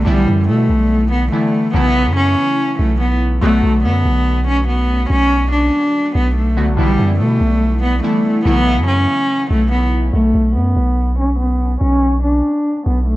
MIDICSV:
0, 0, Header, 1, 4, 480
1, 0, Start_track
1, 0, Key_signature, 2, "minor"
1, 0, Tempo, 419580
1, 74, Time_signature, 4, 2, 24, 8
1, 15061, End_track
2, 0, Start_track
2, 0, Title_t, "Cello"
2, 0, Program_c, 0, 42
2, 73, Note_on_c, 0, 55, 107
2, 525, Note_off_c, 0, 55, 0
2, 553, Note_on_c, 0, 57, 90
2, 1230, Note_off_c, 0, 57, 0
2, 1274, Note_on_c, 0, 59, 85
2, 1466, Note_off_c, 0, 59, 0
2, 1515, Note_on_c, 0, 57, 86
2, 1966, Note_off_c, 0, 57, 0
2, 1995, Note_on_c, 0, 59, 125
2, 2446, Note_off_c, 0, 59, 0
2, 2474, Note_on_c, 0, 61, 98
2, 3151, Note_off_c, 0, 61, 0
2, 3195, Note_on_c, 0, 57, 89
2, 3387, Note_off_c, 0, 57, 0
2, 3435, Note_on_c, 0, 59, 82
2, 3627, Note_off_c, 0, 59, 0
2, 3914, Note_on_c, 0, 57, 118
2, 4365, Note_off_c, 0, 57, 0
2, 4396, Note_on_c, 0, 59, 97
2, 5072, Note_off_c, 0, 59, 0
2, 5115, Note_on_c, 0, 61, 93
2, 5307, Note_off_c, 0, 61, 0
2, 5356, Note_on_c, 0, 59, 82
2, 5806, Note_off_c, 0, 59, 0
2, 5834, Note_on_c, 0, 61, 109
2, 6285, Note_off_c, 0, 61, 0
2, 6314, Note_on_c, 0, 62, 79
2, 6991, Note_off_c, 0, 62, 0
2, 7034, Note_on_c, 0, 59, 81
2, 7226, Note_off_c, 0, 59, 0
2, 7274, Note_on_c, 0, 57, 80
2, 7725, Note_off_c, 0, 57, 0
2, 7752, Note_on_c, 0, 55, 111
2, 8204, Note_off_c, 0, 55, 0
2, 8234, Note_on_c, 0, 57, 91
2, 8911, Note_off_c, 0, 57, 0
2, 8954, Note_on_c, 0, 59, 88
2, 9146, Note_off_c, 0, 59, 0
2, 9195, Note_on_c, 0, 57, 86
2, 9646, Note_off_c, 0, 57, 0
2, 9674, Note_on_c, 0, 59, 121
2, 10125, Note_off_c, 0, 59, 0
2, 10154, Note_on_c, 0, 61, 96
2, 10831, Note_off_c, 0, 61, 0
2, 10873, Note_on_c, 0, 57, 87
2, 11066, Note_off_c, 0, 57, 0
2, 11113, Note_on_c, 0, 59, 80
2, 11306, Note_off_c, 0, 59, 0
2, 11593, Note_on_c, 0, 57, 107
2, 12045, Note_off_c, 0, 57, 0
2, 12075, Note_on_c, 0, 59, 94
2, 12751, Note_off_c, 0, 59, 0
2, 12795, Note_on_c, 0, 61, 90
2, 12987, Note_off_c, 0, 61, 0
2, 13035, Note_on_c, 0, 59, 79
2, 13486, Note_off_c, 0, 59, 0
2, 13514, Note_on_c, 0, 61, 109
2, 13965, Note_off_c, 0, 61, 0
2, 13995, Note_on_c, 0, 62, 78
2, 14671, Note_off_c, 0, 62, 0
2, 14715, Note_on_c, 0, 59, 80
2, 14907, Note_off_c, 0, 59, 0
2, 14956, Note_on_c, 0, 57, 77
2, 15061, Note_off_c, 0, 57, 0
2, 15061, End_track
3, 0, Start_track
3, 0, Title_t, "Synth keys"
3, 0, Program_c, 1, 88
3, 0, Control_c, 1, 64, 127
3, 57, Note_on_c, 1, 50, 68
3, 64, Note_on_c, 1, 52, 64
3, 71, Note_on_c, 1, 55, 64
3, 77, Note_on_c, 1, 59, 63
3, 84, Note_on_c, 1, 64, 75
3, 89, Control_c, 1, 64, 0
3, 265, Control_c, 1, 64, 127
3, 1476, Note_off_c, 1, 50, 0
3, 1480, Note_off_c, 1, 52, 0
3, 1483, Note_off_c, 1, 55, 0
3, 1487, Note_off_c, 1, 59, 0
3, 1490, Note_off_c, 1, 64, 0
3, 1511, Note_on_c, 1, 50, 53
3, 1514, Note_on_c, 1, 52, 48
3, 1518, Note_on_c, 1, 55, 51
3, 1521, Note_on_c, 1, 59, 48
3, 1525, Note_on_c, 1, 64, 62
3, 1977, Note_off_c, 1, 52, 0
3, 1985, Note_on_c, 1, 49, 70
3, 1991, Note_on_c, 1, 52, 64
3, 1993, Note_off_c, 1, 50, 0
3, 1996, Note_off_c, 1, 55, 0
3, 1998, Note_off_c, 1, 59, 0
3, 1998, Note_on_c, 1, 54, 64
3, 1999, Note_off_c, 1, 64, 0
3, 2005, Note_on_c, 1, 57, 59
3, 2008, Control_c, 1, 64, 0
3, 2012, Note_on_c, 1, 64, 78
3, 2192, Control_c, 1, 64, 127
3, 3871, Note_off_c, 1, 49, 0
3, 3874, Note_off_c, 1, 52, 0
3, 3878, Note_off_c, 1, 54, 0
3, 3881, Note_off_c, 1, 57, 0
3, 3885, Note_off_c, 1, 64, 0
3, 3903, Note_on_c, 1, 50, 68
3, 3910, Note_on_c, 1, 54, 63
3, 3917, Note_on_c, 1, 57, 62
3, 3923, Note_on_c, 1, 59, 64
3, 3928, Control_c, 1, 64, 0
3, 3930, Note_on_c, 1, 66, 72
3, 4139, Control_c, 1, 64, 127
3, 7463, Note_off_c, 1, 50, 0
3, 7466, Note_off_c, 1, 54, 0
3, 7470, Note_off_c, 1, 57, 0
3, 7473, Note_off_c, 1, 59, 0
3, 7476, Note_off_c, 1, 66, 0
3, 7510, Note_on_c, 1, 50, 52
3, 7513, Note_on_c, 1, 54, 48
3, 7517, Note_on_c, 1, 57, 50
3, 7519, Note_on_c, 1, 59, 52
3, 7523, Note_on_c, 1, 66, 56
3, 7724, Note_off_c, 1, 50, 0
3, 7737, Note_on_c, 1, 50, 67
3, 7744, Note_off_c, 1, 59, 0
3, 7745, Note_on_c, 1, 52, 63
3, 7751, Note_on_c, 1, 55, 65
3, 7753, Note_off_c, 1, 54, 0
3, 7755, Note_off_c, 1, 57, 0
3, 7757, Note_on_c, 1, 59, 64
3, 7759, Note_off_c, 1, 66, 0
3, 7764, Note_on_c, 1, 64, 74
3, 7768, Control_c, 1, 64, 0
3, 8001, Control_c, 1, 64, 127
3, 9157, Note_off_c, 1, 50, 0
3, 9161, Note_off_c, 1, 52, 0
3, 9164, Note_off_c, 1, 55, 0
3, 9167, Note_off_c, 1, 59, 0
3, 9170, Note_off_c, 1, 64, 0
3, 9190, Note_on_c, 1, 50, 52
3, 9193, Note_on_c, 1, 52, 49
3, 9196, Note_on_c, 1, 55, 49
3, 9200, Note_on_c, 1, 59, 48
3, 9203, Note_on_c, 1, 64, 63
3, 9658, Note_off_c, 1, 52, 0
3, 9665, Note_on_c, 1, 49, 72
3, 9672, Note_off_c, 1, 50, 0
3, 9672, Note_on_c, 1, 52, 64
3, 9675, Note_off_c, 1, 55, 0
3, 9677, Note_off_c, 1, 59, 0
3, 9678, Note_off_c, 1, 64, 0
3, 9678, Note_on_c, 1, 54, 64
3, 9685, Note_on_c, 1, 57, 59
3, 9689, Control_c, 1, 64, 0
3, 9691, Note_on_c, 1, 64, 74
3, 9870, Control_c, 1, 64, 127
3, 11551, Note_off_c, 1, 49, 0
3, 11555, Note_off_c, 1, 52, 0
3, 11558, Note_off_c, 1, 54, 0
3, 11561, Note_off_c, 1, 57, 0
3, 11564, Note_off_c, 1, 64, 0
3, 11608, Control_c, 1, 64, 0
3, 15061, End_track
4, 0, Start_track
4, 0, Title_t, "808-style bass"
4, 0, Program_c, 2, 38
4, 76, Note_on_c, 2, 35, 112
4, 305, Note_off_c, 2, 35, 0
4, 316, Note_on_c, 2, 42, 102
4, 557, Note_on_c, 2, 47, 99
4, 574, Note_off_c, 2, 42, 0
4, 783, Note_off_c, 2, 47, 0
4, 795, Note_on_c, 2, 35, 101
4, 1486, Note_off_c, 2, 35, 0
4, 1995, Note_on_c, 2, 35, 109
4, 2360, Note_on_c, 2, 42, 99
4, 2377, Note_off_c, 2, 35, 0
4, 2696, Note_off_c, 2, 42, 0
4, 3194, Note_on_c, 2, 35, 106
4, 3885, Note_off_c, 2, 35, 0
4, 3915, Note_on_c, 2, 35, 116
4, 4145, Note_off_c, 2, 35, 0
4, 4154, Note_on_c, 2, 35, 108
4, 4394, Note_on_c, 2, 42, 97
4, 4411, Note_off_c, 2, 35, 0
4, 4622, Note_off_c, 2, 42, 0
4, 4635, Note_on_c, 2, 35, 107
4, 5789, Note_off_c, 2, 35, 0
4, 5834, Note_on_c, 2, 35, 111
4, 6525, Note_off_c, 2, 35, 0
4, 7033, Note_on_c, 2, 35, 110
4, 7513, Note_on_c, 2, 37, 98
4, 7531, Note_off_c, 2, 35, 0
4, 7641, Note_on_c, 2, 35, 103
4, 7658, Note_off_c, 2, 37, 0
4, 7748, Note_off_c, 2, 35, 0
4, 7754, Note_on_c, 2, 35, 110
4, 7984, Note_off_c, 2, 35, 0
4, 7994, Note_on_c, 2, 42, 101
4, 8233, Note_on_c, 2, 47, 101
4, 8251, Note_off_c, 2, 42, 0
4, 8462, Note_off_c, 2, 47, 0
4, 8473, Note_on_c, 2, 35, 104
4, 9164, Note_off_c, 2, 35, 0
4, 9674, Note_on_c, 2, 35, 107
4, 10042, Note_on_c, 2, 42, 97
4, 10059, Note_off_c, 2, 35, 0
4, 10377, Note_off_c, 2, 42, 0
4, 10875, Note_on_c, 2, 35, 108
4, 11566, Note_off_c, 2, 35, 0
4, 11594, Note_on_c, 2, 35, 111
4, 11824, Note_off_c, 2, 35, 0
4, 11834, Note_on_c, 2, 35, 104
4, 12074, Note_on_c, 2, 42, 101
4, 12091, Note_off_c, 2, 35, 0
4, 12302, Note_off_c, 2, 42, 0
4, 12314, Note_on_c, 2, 35, 103
4, 13468, Note_off_c, 2, 35, 0
4, 13515, Note_on_c, 2, 35, 114
4, 14206, Note_off_c, 2, 35, 0
4, 14714, Note_on_c, 2, 35, 108
4, 15061, Note_off_c, 2, 35, 0
4, 15061, End_track
0, 0, End_of_file